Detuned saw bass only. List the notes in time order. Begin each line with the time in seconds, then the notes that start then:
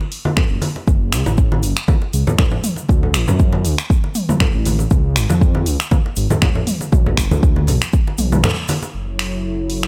0.50 F#1
0.87 F#1
1.13 C#2
1.26 A1
1.63 F#1
2.14 C#2
2.89 D2
3.14 A1
3.28 F#2
3.65 D2
4.54 A1
4.91 C#2
5.16 G#1
5.30 F2
5.66 C#2
6.17 G#1
6.92 B1
7.18 F#1
7.31 D2
7.68 B1
8.19 B1
8.94 F#1